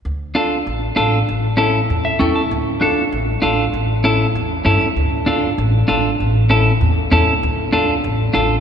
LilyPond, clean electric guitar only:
\new Staff \with { instrumentName = "Clean electric guitar" } { \time 4/4 \key d \minor \tempo 4 = 195 r4 <d' f' a'>8 r4. <d' f' a'>8 r8 | r4 <cis' e' a'>8 r4 e''8 <cis' e' a' g''>8 a''8 | r4 <d' f' a'>8 r4. <d' f' a'>8 r8 | r4 <cis' e' a'>8 r4. <cis' e' a'>8 r8 |
r4 <d' f' a'>8 r4. <d' f' a'>8 r8 | r4 <cis' e' a'>8 r4. <cis' e' a'>8 r8 | r4 <d' f' a'>8 r4. <d' f' a'>8 r8 | }